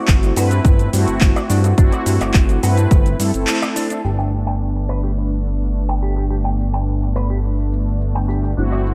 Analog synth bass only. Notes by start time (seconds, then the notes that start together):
0.08 G1
0.36 G2
0.65 G1
0.93 G2
1.08 G1
1.21 G1
1.49 G2
1.78 G1
2.06 G2
2.21 G1
2.34 G1
2.63 G2
2.91 G1
3.19 G2
3.34 G1
4.04 G1
8.57 G1